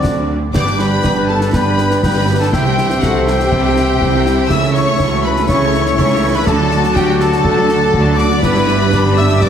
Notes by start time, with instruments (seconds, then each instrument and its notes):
Already playing: trombone section F#3 C4, french horn section D4, viola section F#4, clarinet D5, oboe D5, violin section D5, trumpet section D5, flute D6
0.04 double bass section D2, cello section D3, concert bass drum, snare
0.53 double bass section G1, cello section G2, trombone section G3 D4, viola section B3 G4, clarinet B4, violin section D5 D6, trumpet section D5, oboe G5, flute D6, concert bass drum, snare, crash
0.66 viola section D4 B4, snare
0.79 viola section B3 G4, trumpet section B4, violin section B4 B5, flute B5, snare
0.92 viola section D4 B4
1.04 double bass section G1, cello section G2, viola section B3 G4, concert bass drum, snare
1.16 viola section D4 B4
1.28 viola section B3 G4, violin section A4 A5, trumpet section A4, flute A5
1.41 viola section D4 B4, snare
1.52 double bass section G1, cello section G2, trombone section G3 D4, viola section B3 G4, violin section B4 B5, trumpet section B4, clarinet B4, french horn section B4, oboe G5, flute B5, concert bass drum, snare
1.66 viola section D4 B4
1.78 viola section B3 G4, snare
1.91 viola section D4 B4, snare
2.02 double bass section G1, cello section G2, trombone section G3 D4, viola section B3 G4, clarinet B4, trumpet section B4, violin section B4 B5, oboe G5, flute B5, concert bass drum, snare
2.16 viola section D4 B4
2.28 trombone section F#3, viola section B3 G4
2.40 viola section D4 B4, trumpet section A4, violin section A4 A5, flute A5
2.52 double bass section C2, cello section C3, trombone section E3 C4, viola section G3 E4, violin section G4 G5, trumpet section G4, french horn section C5, clarinet C5, oboe E5, flute G5, concert bass drum, snare
2.66 viola section C4 G4
2.77 viola section G3 E4, snare
2.90 viola section C4 G4, snare
3.01 double bass section C2, cello section C3, viola section G3 E4, trumpet section F#4, violin section F#4 F#5, french horn section A4, flute F#5, concert bass drum, snare
3.15 viola section C4 G4
3.27 viola section G3 E4, trumpet section G4, violin section G4 G5, flute G5, snare
3.40 viola section C4 G4, snare
3.51 double bass section C2, cello section C3, viola section G3 E4, french horn section G4, concert bass drum
3.66 viola section C4 G4
3.76 viola section G3 E4, snare
3.89 viola section C4 G4
4.01 double bass section C2, cello section C3, viola section G3 E4, french horn section E4, concert bass drum
4.14 viola section C4 G4
4.26 viola section G3 E4, snare
4.39 viola section C4 G4
4.49 double bass section C#2, cello section C#3, trombone section E3 A3, viola section C#4 E4, french horn section E4, clarinet A4, violin section E5 E6, oboe E5, trumpet section E5, flute E6, concert bass drum, snare, crash
4.62 viola section A3 C#4, snare
4.73 viola section C#4 E4, violin section C#5 C#6, trumpet section C#5, flute C#6, snare
4.87 viola section A3 C#4
4.98 double bass section C#2, cello section C#3, viola section C#4 E4, french horn section F#4, concert bass drum, snare
5.13 viola section A3 C#4
5.23 viola section C#4 E4, violin section B4 B5, trumpet section B4, flute B5
5.36 viola section A3 C#4, snare
5.47 double bass section C#2, cello section C#3, trombone section E3 A3, french horn section E4, clarinet A4, violin section C#5 C#6, trumpet section C#5, oboe E5, flute C#6, concert bass drum, snare
5.51 viola section C#4 E4
5.63 viola section A3 C#4
5.74 viola section C#4 E4, snare
5.86 viola section A3 C#4, snare
5.96 double bass section C#2, cello section C#3, trombone section E3 A3, clarinet A4, violin section C#5 C#6, trumpet section C#5, oboe E5, flute C#6, concert bass drum, snare
6.00 viola section C#4 E4
6.12 viola section A3 C#4
6.20 trombone section G3
6.25 viola section C#4 E4
6.34 viola section A3 C#4, trumpet section B4, violin section B4 B5, flute B5
6.45 double bass section D2, trombone section D3 F#3, cello section D3, viola section A3 D4, clarinet F#4, french horn section F#4, violin section A4 A5, trumpet section A4, oboe D5, flute A5, concert bass drum, snare
6.60 viola section F#3 F#4
6.71 viola section A3 D4, snare
6.84 viola section F#3 F#4, snare
6.94 double bass section D2, cello section D3, viola section A3 D4, violin section G4 G5, trumpet section G4, flute G5, concert bass drum, snare
7.09 viola section F#3 F#4
7.19 viola section A3 D4, violin section A4 A5, trumpet section A4, flute A5, snare
7.32 viola section F#3 F#4, snare
7.44 double bass section D2, cello section D3, viola section A3 D4, french horn section A4, concert bass drum
7.56 viola section F#3 F#4
7.69 viola section A3 D4, snare
7.81 viola section F#3 F#4
7.93 double bass section D2, cello section D3, viola section A3 D4, french horn section F#4, concert bass drum
8.06 viola section F#3 F#4
8.18 viola section A3 D4, trumpet section D5, violin section D5 D6, flute D6, snare
8.31 viola section F#3 F#4
8.43 double bass section G1, cello section G2, trombone section D3 G3, viola section B3 D4, french horn section E4, clarinet G4, violin section B4 B5, trumpet section B4, oboe D5, flute B5, concert bass drum, snare, crash
8.55 viola section G3 B3, snare
8.66 viola section B3 D4, snare
8.79 viola section G3 B3
8.92 viola section B3 D4, french horn section D4, concert bass drum, snare
9.04 viola section G3 B3
9.17 viola section B3 D4, trumpet section E5, violin section E5 E6, flute E6
9.29 viola section G3 B3, snare
9.41 viola section B3 D4, french horn section B4, trumpet section D5, violin section D5 D6, flute D6, concert bass drum, snare